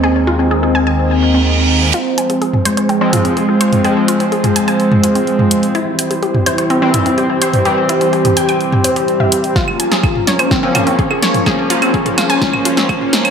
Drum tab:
HH |----------------|x-xxx-xxx-xxx-xx|x-xxxxxxx-xxx-xx|x-xxx-xxx-xxx-xx|
CL |----------------|----------------|----------------|----------------|
SD |----------------|----------------|----------------|----------------|
T2 |----------------|-----o----o----o|-----o---o---o--|-----o----o----o|
BD |----------------|----------------|----------------|----------------|

HH |x-xxxxxxx-xxx-xx|x-xxx-xxx-xxx-xx|x-xxxxxxx-xxx-xx|
CL |----------------|-x--x--x--x--x--|x--x--x--x--x--x|
SD |----------------|o--o--o-o-----o-|o-----o-o--o--o-|
T2 |-----o---o---o--|-----o----o----o|-----o---o---o--|
BD |----------------|o---o---o---o---|o---o---o---o---|